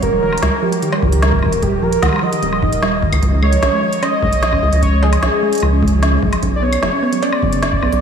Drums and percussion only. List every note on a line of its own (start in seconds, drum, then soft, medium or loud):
0.03 kick medium
0.03 closed hi-hat medium
0.33 high woodblock medium
0.38 closed hi-hat medium
0.43 snare loud
0.43 closed hi-hat medium
0.73 closed hi-hat medium
0.82 closed hi-hat medium
0.93 cowbell medium
0.93 high woodblock medium
1.03 kick loud
1.13 closed hi-hat medium
1.23 snare loud
1.23 closed hi-hat medium
1.33 kick loud
1.39 kick medium
1.39 high woodblock medium
1.46 kick medium
1.53 closed hi-hat medium
1.63 kick medium
1.63 closed hi-hat medium
1.93 closed hi-hat medium
2.03 snare loud
2.03 closed hi-hat medium
2.03 high woodblock soft
2.06 high woodblock soft
2.09 high woodblock soft
2.13 high woodblock medium
2.16 high woodblock medium
2.19 high woodblock medium
2.33 closed hi-hat medium
2.43 closed hi-hat medium
2.53 high woodblock medium
2.63 kick loud
2.73 closed hi-hat medium
2.83 snare loud
3.03 kick loud
3.13 closed hi-hat medium
3.13 high woodblock medium
3.23 kick medium
3.23 closed hi-hat medium
3.43 high woodblock medium
3.53 closed hi-hat medium
3.63 snare loud
3.63 closed hi-hat soft
3.93 closed hi-hat medium
4.03 closed hi-hat medium
4.03 cowbell medium
4.03 high woodblock medium
4.23 kick loud
4.33 closed hi-hat medium
4.43 snare loud
4.43 closed hi-hat soft
4.53 kick loud
4.53 high woodblock medium
4.73 closed hi-hat medium
4.83 kick medium
4.83 closed hi-hat medium
5.03 cowbell medium
5.13 closed hi-hat medium
5.13 high woodblock medium
5.23 snare loud
5.23 closed hi-hat soft
5.53 closed hi-hat medium
5.55 closed hi-hat medium
5.58 closed hi-hat soft
5.60 closed hi-hat soft
5.60 high woodblock medium
5.83 kick loud
5.88 closed hi-hat medium
6.03 snare loud
6.03 closed hi-hat soft
6.23 kick loud
6.33 closed hi-hat medium
6.33 high woodblock medium
6.43 kick medium
6.43 closed hi-hat medium
6.73 closed hi-hat medium
6.73 high woodblock medium
6.83 snare loud
7.13 closed hi-hat medium
7.23 closed hi-hat medium
7.23 cowbell loud
7.33 high woodblock medium
7.43 kick loud
7.53 closed hi-hat medium
7.63 snare loud
7.63 closed hi-hat soft
7.73 kick loud
7.83 high woodblock medium
7.93 closed hi-hat medium